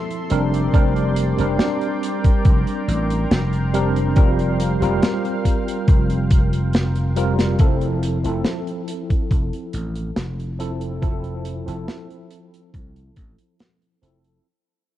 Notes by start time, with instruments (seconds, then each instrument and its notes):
Already playing: tine electric piano F3 C4 E4 A4, analog synth pad A4 E5 C6
0.11 closed hi-hat
0.30 slap bass F1, tine electric piano G3 C4 D4 A#4, analog synth pad A#4 D5 G5, closed hi-hat
0.54 closed hi-hat
0.73 slap bass F1, tine electric piano G3 C4 D4 A#4, kick, closed hi-hat
0.96 closed hi-hat
1.16 closed hi-hat
1.38 slap bass F1, tine electric piano G3 C4 D4 A#4, closed hi-hat
1.59 snare, closed hi-hat
1.81 closed hi-hat
2.03 closed hi-hat
2.24 kick, closed hi-hat
2.45 slap bass F1, kick, closed hi-hat
2.67 closed hi-hat
2.88 slap bass A1, closed hi-hat
3.10 closed hi-hat
3.31 slap bass F1, snare, closed hi-hat
3.53 closed hi-hat
3.73 tine electric piano G3 C4 D4 A#4, closed hi-hat
3.96 closed hi-hat
4.16 slap bass F1, tine electric piano G3 C4 F4 A#4, analog synth pad F5, kick, closed hi-hat
4.39 closed hi-hat
4.60 closed hi-hat
4.80 slap bass F1, tine electric piano G3 C4 F4 A#4, closed hi-hat
5.02 snare, closed hi-hat
5.25 closed hi-hat
5.45 kick, closed hi-hat
5.68 closed hi-hat
5.88 slap bass F1, kick, closed hi-hat
6.10 closed hi-hat
6.31 kick, closed hi-hat
6.53 closed hi-hat
6.73 snare, closed hi-hat
6.95 closed hi-hat
7.16 tine electric piano G3 C4 F4 A#4, closed hi-hat
7.39 snare, closed hi-hat
7.59 slap bass F1, tine electric piano F3 C4 E4 A4, kick, closed hi-hat
7.81 closed hi-hat
8.03 closed hi-hat
8.23 slap bass F1, tine electric piano F3 C4 E4 A4, closed hi-hat
8.45 snare, closed hi-hat
8.67 closed hi-hat
8.88 closed hi-hat
9.10 kick, closed hi-hat
9.31 slap bass F1, kick, closed hi-hat
9.53 closed hi-hat
9.73 slap bass A1, closed hi-hat
9.96 closed hi-hat
10.16 slap bass F1, snare, closed hi-hat
10.40 closed hi-hat
10.59 tine electric piano F3 C4 E4 A4, closed hi-hat
10.81 closed hi-hat
11.02 tine electric piano F3 C4 E4 A4, kick, closed hi-hat
11.24 closed hi-hat
11.45 closed hi-hat
11.66 slap bass F1, tine electric piano F3 C4 E4 A4, closed hi-hat
11.88 snare, closed hi-hat
12.11 closed hi-hat
12.30 closed hi-hat
12.54 closed hi-hat
12.74 slap bass C2, kick, closed hi-hat
12.96 closed hi-hat
13.16 slap bass A1, kick, closed hi-hat
13.38 closed hi-hat
13.59 snare, closed hi-hat
13.82 closed hi-hat
14.02 slap bass F1, tine electric piano F3 C4 E4 A4, closed hi-hat
14.24 closed hi-hat